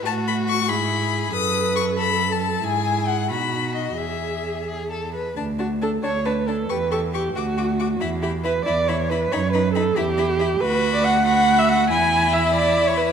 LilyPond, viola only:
\new Staff \with { instrumentName = "Viola" } { \time 6/8 \key e \major \tempo 4. = 92 fis'4. e'4. | a'2. | e'4. dis'4. | gis'2~ gis'8 r8 |
\key d \major r8 fis'8 a'8 cis''8 b'8 a'8 | b'8 a'8 g'8 fis'4. | r8 g'8 b'8 d''8 cis''8 b'8 | cis''8 b'8 a'8 g'4. |
\key b \dorian b'8. d''16 fis''8 fis''8. e''16 fis''8 | gis''4 e''8 d''8. cis''16 b'8 | }